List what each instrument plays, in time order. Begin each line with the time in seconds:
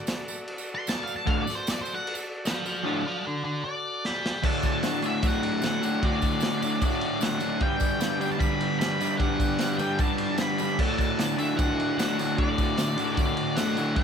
Already playing: transistor combo organ F#4 A4 D5
0.07 snare, tambourine, crash
0.28 tambourine
0.38 tambourine
0.48 crash
0.58 tambourine
0.69 tambourine
0.75 lead electric guitar C6
0.87 lead electric guitar A5, snare, tambourine, crash
1.03 lead electric guitar F5
1.07 tambourine
1.16 lead electric guitar A5, tambourine
1.24 overdriven electric guitar D2 A2 D3, transistor combo organ F#4 A4 D5, lead electric guitar F5, kick, tambourine, crash
1.42 lead electric guitar D5
1.47 snare, tambourine
1.55 lead electric guitar C5
1.67 lead electric guitar D5, snare, tambourine, crash
1.81 lead electric guitar C5
1.86 tambourine
1.94 lead electric guitar F#5, tambourine
2.07 crash
2.15 tambourine
2.26 tambourine
2.45 lead electric guitar F5 A5, snare, tambourine, crash
2.66 lead electric guitar F5 A5, tambourine
2.76 tambourine
2.84 overdriven electric guitar D2 A2 D3, lead electric guitar C5 F5
3.07 lead electric guitar C5 F5
3.26 lead electric guitar A4 D5
3.44 lead electric guitar A4 D5
3.64 lead electric guitar D5
4.05 lead electric guitar B5, snare
4.26 snare
4.43 overdriven electric guitar D2 A2 D3, transistor combo organ F#4 A4 D5, lead electric guitar A5, kick, crash
4.63 lead electric guitar A5, kick, ride, tambourine
4.83 overdriven electric guitar D2 A2 D3, snare, ride, tambourine
5.02 overdriven electric guitar D2 A2 D3, lead electric guitar E5, ride, tambourine
5.22 overdriven electric guitar D2 A2 D3, kick, ride, tambourine
5.27 lead electric guitar F#5
5.43 ride
5.62 overdriven electric guitar D2 A2 D3, snare, ride, tambourine
5.66 lead electric guitar F#5
5.82 overdriven electric guitar D2 A2 D3, ride, tambourine
6.03 overdriven electric guitar D2 A2 D3, lead electric guitar D5, kick, ride
6.22 kick, ride, tambourine
6.41 overdriven electric guitar D2 A2 D3, snare, ride, tambourine
6.62 overdriven electric guitar D2 A2 D3, ride, tambourine
6.82 overdriven electric guitar D2 A2 D3, lead electric guitar D5, kick, ride, tambourine
7.01 ride
7.21 overdriven electric guitar D2 A2 D3, lead electric guitar F#5, snare, ride, tambourine
7.40 overdriven electric guitar D2 A2 D3, ride, tambourine
7.60 overdriven electric guitar G2 D3 G3, transistor combo organ G4 B4 D5, lead electric guitar G5, kick, ride
7.80 kick, ride, tambourine
7.99 overdriven electric guitar G2 D3 G3, snare, ride, tambourine
8.20 overdriven electric guitar G2 D3 G3, lead electric guitar G5, ride, tambourine
8.32 lead electric guitar A5
8.38 overdriven electric guitar G2 D3 G3, lead electric guitar B5, kick, ride
8.42 tambourine
8.61 ride
8.79 overdriven electric guitar G2 D3 G3, lead electric guitar B5, snare, ride, tambourine
9.00 overdriven electric guitar G2 D3 G3, snare, ride, tambourine
9.18 overdriven electric guitar G2 D3 G3, lead electric guitar F#5, kick, ride, tambourine
9.40 kick, ride, tambourine
9.59 overdriven electric guitar G2 D3 G3, snare, ride, tambourine
9.78 overdriven electric guitar G2 D3 G3, lead electric guitar G5, ride, tambourine
9.99 overdriven electric guitar G2 D3 G3, lead electric guitar A5, kick, ride, tambourine
10.18 ride, tambourine
10.38 overdriven electric guitar G2 D3 G3, lead electric guitar B5, snare, ride, tambourine
10.58 overdriven electric guitar G2 D3, ride, tambourine
10.62 overdriven electric guitar G3
10.78 overdriven electric guitar D2 A2 D3, transistor combo organ F#4 A4 D5, lead electric guitar A5, kick, crash
10.98 lead electric guitar A5, kick, ride, tambourine
11.19 overdriven electric guitar D2 A2 D3, snare, ride, tambourine
11.37 overdriven electric guitar D2 A2 D3, lead electric guitar E5, ride, tambourine
11.55 overdriven electric guitar D2 A2 D3, lead electric guitar F#5, kick, ride, tambourine
11.80 ride
11.98 overdriven electric guitar D2 A2 D3, lead electric guitar F#5, snare, ride, tambourine
12.18 overdriven electric guitar D2 A2 D3, snare, ride, tambourine
12.38 overdriven electric guitar D2 A2 D3, lead electric guitar D5, kick, ride
12.58 kick, ride, tambourine
12.77 overdriven electric guitar D2 A2 D3, snare, ride, tambourine
12.97 overdriven electric guitar D2 A2 D3, ride, tambourine
13.16 overdriven electric guitar D2 A2, lead electric guitar D5, kick, ride, tambourine
13.20 overdriven electric guitar D3
13.37 ride
13.56 overdriven electric guitar D2 A2 D3, lead electric guitar F#5, snare, ride, tambourine
13.77 overdriven electric guitar D2 A2 D3, ride, tambourine
13.96 overdriven electric guitar G2 D3 G3, transistor combo organ G4 B4 D5, lead electric guitar G5, kick, ride